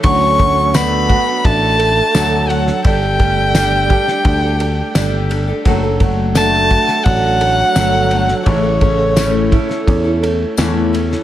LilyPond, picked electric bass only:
\new Staff \with { instrumentName = "Picked electric bass" } { \clef bass \time 4/4 \key d \major \tempo 4 = 85 d,2 a,,4 d,4 | g,,2 d,4 g,,4 | fis,,2 a,,4 g,,4 | a,,2 e,4 e,4 | }